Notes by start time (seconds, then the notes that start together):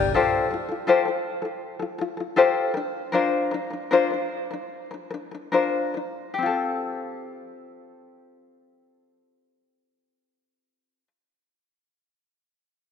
Already playing: G1 G4 D5
0.00 D4
0.14 F4 G4 A4 C5
0.51 F4 A4
0.69 F4 A4
0.87 F4 G4 A4 C5
1.05 F4 A4
1.42 F4 A4
1.79 F4 A4
1.98 F4 A4
2.17 F4 A4
2.36 F4 G4 A4 C5
2.74 D4 A#4
3.12 D4 F4 A#4 C5
3.51 D4 A#4
3.70 D4 A#4
3.91 D4 F4 A#4 C5
4.10 D4 A#4
4.51 D4 A#4
4.91 D4 A#4
5.11 D4 A#4
5.31 D4 A#4
5.52 D4 F4 A#4 C5
5.94 D4 A#4
6.34 G4
6.38 C4
6.42 F4 A4